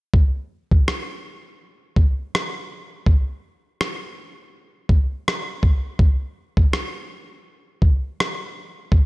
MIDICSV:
0, 0, Header, 1, 2, 480
1, 0, Start_track
1, 0, Tempo, 731707
1, 90, Time_signature, 4, 2, 24, 8
1, 5943, End_track
2, 0, Start_track
2, 0, Title_t, "Drums"
2, 89, Note_on_c, 9, 36, 108
2, 155, Note_off_c, 9, 36, 0
2, 469, Note_on_c, 9, 36, 82
2, 534, Note_off_c, 9, 36, 0
2, 577, Note_on_c, 9, 37, 109
2, 643, Note_off_c, 9, 37, 0
2, 1288, Note_on_c, 9, 36, 85
2, 1354, Note_off_c, 9, 36, 0
2, 1541, Note_on_c, 9, 37, 113
2, 1606, Note_off_c, 9, 37, 0
2, 2010, Note_on_c, 9, 36, 104
2, 2076, Note_off_c, 9, 36, 0
2, 2498, Note_on_c, 9, 37, 109
2, 2563, Note_off_c, 9, 37, 0
2, 3209, Note_on_c, 9, 36, 86
2, 3275, Note_off_c, 9, 36, 0
2, 3463, Note_on_c, 9, 37, 116
2, 3529, Note_off_c, 9, 37, 0
2, 3692, Note_on_c, 9, 36, 88
2, 3758, Note_off_c, 9, 36, 0
2, 3931, Note_on_c, 9, 36, 103
2, 3996, Note_off_c, 9, 36, 0
2, 4310, Note_on_c, 9, 36, 86
2, 4376, Note_off_c, 9, 36, 0
2, 4417, Note_on_c, 9, 37, 105
2, 4483, Note_off_c, 9, 37, 0
2, 5129, Note_on_c, 9, 36, 84
2, 5195, Note_off_c, 9, 36, 0
2, 5381, Note_on_c, 9, 37, 115
2, 5447, Note_off_c, 9, 37, 0
2, 5850, Note_on_c, 9, 36, 103
2, 5916, Note_off_c, 9, 36, 0
2, 5943, End_track
0, 0, End_of_file